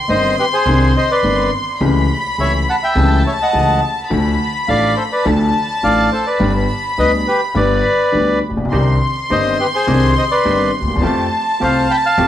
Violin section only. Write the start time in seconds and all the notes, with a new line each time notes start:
Already playing: C6
1.80 B5
2.95 A5
4.10 B5
5.24 A5
6.40 B5
8.71 C6
11.03 A5